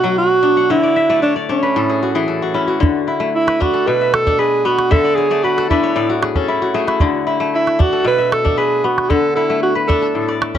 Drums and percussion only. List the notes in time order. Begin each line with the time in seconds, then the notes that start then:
2.83 calabash thump
3.48 calabash click
3.62 calabash thump
4.14 calabash click
4.27 calabash thump
4.79 calabash click
4.92 calabash thump
5.58 calabash click
5.71 calabash thump
6.23 calabash click
6.35 calabash thump
6.88 calabash click
7.00 calabash thump
7.67 calabash click
7.80 calabash thump
8.32 calabash click
8.46 calabash thump
8.98 calabash click
9.11 calabash thump
9.90 calabash thump
10.29 calabash click
10.42 calabash click
10.54 calabash thump